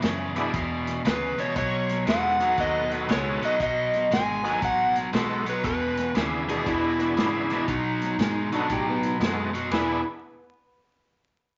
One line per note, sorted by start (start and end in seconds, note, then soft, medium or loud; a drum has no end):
0.00 0.32 E2 medium
0.00 0.52 F#2 medium
0.00 0.32 C#3 medium
0.00 1.14 D5 medium
0.00 0.93 E5 medium
0.00 snare loud
0.00 closed hi-hat medium
0.35 0.51 E2 medium
0.35 0.52 B2 medium
0.35 0.52 B3 medium
0.35 0.52 D4 medium
0.35 0.52 E4 medium
0.35 0.52 G#4 medium
0.35 snare soft
0.35 closed hi-hat medium
0.53 1.01 E2 medium
0.53 1.03 E2 medium
0.53 1.02 B2 medium
0.53 kick medium
0.53 snare soft
0.53 closed hi-hat medium
0.87 snare soft
0.87 closed hi-hat medium
1.04 1.35 D2 medium
1.04 1.35 E2 medium
1.04 1.35 C#3 medium
1.04 1.41 B4 medium
1.04 snare loud
1.04 closed hi-hat medium
1.38 1.54 E2 medium
1.38 1.54 B2 medium
1.38 1.57 C#5 medium
1.38 muted fingered electric bass stroke soft
1.38 snare soft
1.38 closed hi-hat medium
1.55 2.05 B1 medium
1.55 2.03 B2 medium
1.55 2.03 F#3 medium
1.55 2.04 C#5 medium
1.55 kick loud
1.55 snare soft
1.55 closed hi-hat medium
1.89 snare soft
1.89 closed hi-hat medium
2.06 2.56 E2 medium
2.06 2.37 B2 medium
2.06 2.37 G#3 medium
2.06 2.84 B3 medium
2.06 2.84 D#4 soft
2.06 2.85 F#4 soft
2.06 2.85 A4 medium
2.06 2.61 F#5 medium
2.06 snare loud
2.06 closed hi-hat medium
2.40 2.56 B2 medium
2.40 2.56 F#3 medium
2.40 snare soft
2.40 closed hi-hat medium
2.58 3.07 D#2 medium
2.58 3.05 B2 medium
2.58 3.06 F#3 medium
2.58 2.90 D#5 medium
2.58 kick medium
2.58 snare soft
2.58 closed hi-hat medium
2.89 3.56 B3 medium
2.89 3.56 D#4 medium
2.89 3.56 F#4 medium
2.89 3.57 A4 medium
2.89 snare soft
2.89 closed hi-hat medium
3.08 3.40 C#2 medium
3.08 3.39 B2 medium
3.08 3.39 G#3 medium
3.08 3.42 C#5 medium
3.08 snare loud
3.08 closed hi-hat medium
3.42 3.58 B2 medium
3.42 3.58 F#3 medium
3.42 3.60 D#5 medium
3.42 muted fingered electric bass stroke soft
3.42 snare soft
3.42 closed hi-hat medium
3.60 4.09 B1 medium
3.60 4.07 B2 medium
3.60 4.08 F#3 medium
3.60 4.14 D#5 medium
3.60 kick loud
3.60 closed hi-hat medium
3.93 snare soft
3.93 closed hi-hat medium
4.11 4.60 G#1 medium
4.11 4.41 B2 medium
4.11 4.41 G#3 medium
4.11 4.64 G#5 medium
4.11 snare loud
4.11 closed hi-hat medium
4.43 4.60 B2 medium
4.43 4.61 F#3 medium
4.43 4.60 B3 medium
4.43 4.60 D#4 medium
4.43 4.60 F#4 medium
4.43 4.60 A4 medium
4.43 snare soft
4.43 closed hi-hat medium
4.62 5.12 A1 medium
4.62 5.09 B2 medium
4.62 5.09 F#3 medium
4.62 4.94 F#5 medium
4.62 kick medium
4.62 closed hi-hat medium
4.96 snare soft
4.96 closed hi-hat medium
5.12 5.63 B1 medium
5.12 5.43 B2 medium
5.12 5.43 G#3 medium
5.12 5.42 B3 medium
5.12 5.43 D#4 soft
5.12 5.43 F#4 medium
5.12 5.43 A4 medium
5.12 5.46 A4 medium
5.12 snare loud
5.12 closed hi-hat medium
5.45 5.62 B2 medium
5.45 5.62 F#3 medium
5.45 snare soft
5.45 closed hi-hat medium
5.50 5.65 B4 loud
5.63 6.11 E2 medium
5.63 6.13 E2 medium
5.63 6.11 B2 medium
5.63 6.13 B4 medium
5.63 kick loud
5.63 closed hi-hat medium
5.97 snare soft
5.97 closed hi-hat medium
6.14 6.64 D#2 medium
6.14 6.45 E2 medium
6.14 6.45 C#3 medium
6.14 6.92 B3 medium
6.14 6.93 D4 soft
6.14 6.93 E4 soft
6.14 6.93 G#4 medium
6.14 snare medium
6.14 closed hi-hat medium
6.48 6.64 E2 medium
6.48 6.64 B2 medium
6.48 6.67 G#4 medium
6.48 snare soft
6.48 closed hi-hat medium
6.66 7.13 E2 medium
6.66 7.16 E2 medium
6.66 7.14 B2 loud
6.66 7.65 E4 medium
6.66 kick medium
6.66 closed hi-hat medium
6.99 7.64 B3 medium
6.99 7.64 D4 medium
6.99 7.64 E4 medium
6.99 7.65 G#4 medium
6.99 snare soft
6.99 closed hi-hat medium
7.16 7.47 E2 medium
7.16 7.66 G#2 medium
7.16 7.47 C#3 medium
7.16 snare medium
7.16 closed hi-hat medium
7.50 7.66 E2 medium
7.50 7.67 B2 medium
7.50 snare soft
7.50 closed hi-hat soft
7.68 8.17 B2 medium
7.68 8.15 B2 medium
7.68 8.16 F#3 medium
7.68 9.17 D#4 medium
7.68 kick loud
7.68 closed hi-hat medium
8.02 snare soft
8.02 closed hi-hat medium
8.18 8.68 G#2 medium
8.18 8.49 B2 medium
8.18 8.49 G#3 medium
8.18 snare loud
8.18 closed hi-hat medium
8.52 8.68 B2 medium
8.52 8.68 F#3 medium
8.52 8.68 B3 medium
8.52 8.70 D4 medium
8.52 8.68 D#4 medium
8.52 8.68 F#4 medium
8.52 8.68 A4 medium
8.52 snare soft
8.52 closed hi-hat medium
8.70 9.19 A2 medium
8.70 9.17 B2 medium
8.70 9.17 F#3 medium
8.70 8.87 G4 medium
8.70 kick medium
8.70 closed hi-hat medium
8.90 9.15 B3 medium
9.03 snare soft
9.03 closed hi-hat medium
9.20 9.69 F#2 medium
9.20 9.50 B2 medium
9.20 9.50 G#3 medium
9.20 9.50 B3 medium
9.20 9.50 D#4 medium
9.20 9.50 F#4 soft
9.20 9.51 A4 medium
9.20 snare loud
9.20 closed hi-hat medium
9.53 9.69 B2 medium
9.53 9.70 F#3 medium
9.53 snare soft
9.53 closed hi-hat medium
9.71 10.02 E1 medium
9.71 9.97 E3 medium
9.71 10.01 B3 medium
9.71 9.98 B3 medium
9.71 10.02 B3 medium
9.71 10.01 D4 medium
9.71 9.98 D4 medium
9.71 10.02 E4 medium
9.71 10.03 E4 medium
9.71 9.98 G#4 medium
9.71 10.02 G#4 medium
9.71 snare medium
9.71 ride bell medium